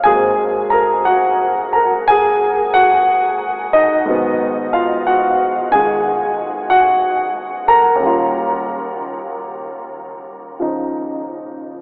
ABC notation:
X:1
M:4/4
L:1/8
Q:"Swing" 1/4=61
K:Ab
V:1 name="Grand piano"
[Afa] [Bb] [_G_g] [Bb] [Aa] [Gg]2 [Ee]- | [Ee] [Ff] [_G_g] [Aa]2 [Gg]2 [Bb]- | [Bb] z6 z |]
V:2 name="Grand piano" clef=bass
[A,,_G,B,C]8 | [A,,E,_G,_C]3 [E,A,]4- [E,A,] | [E,,D,G,F]4- [E,,D,G,F] [D,F,E]3 |]